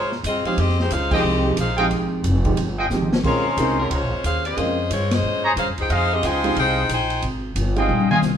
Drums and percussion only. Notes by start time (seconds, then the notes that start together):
0.12 snare
0.24 kick, hi-hat pedal, ride
0.45 ride
0.57 kick, ride
0.69 snare
0.80 snare
0.91 kick, hi-hat pedal, ride
1.11 kick, crash
1.57 kick, hi-hat pedal, ride
1.78 ride
1.90 kick, ride
2.24 kick, hi-hat pedal, ride
2.44 kick, ride
2.57 kick, ride
2.91 snare, hi-hat pedal
3.02 mid tom
3.13 snare
3.24 kick, crash
3.57 kick, hi-hat pedal, ride
3.91 kick, ride
4.24 kick, hi-hat pedal, ride
4.45 ride
4.57 kick, ride
4.90 kick, hi-hat pedal, ride
5.11 snare, ride
5.57 kick, hi-hat pedal, ride
5.78 ride
5.90 kick, ride
6.23 kick, hi-hat pedal, ride
6.44 ride
6.56 kick, ride
6.89 kick, hi-hat pedal, ride
7.10 ride
7.22 kick, ride
7.56 kick, hi-hat pedal, ride
7.76 ride
7.89 high tom
8.00 high tom
8.11 mid tom
8.22 snare, hi-hat pedal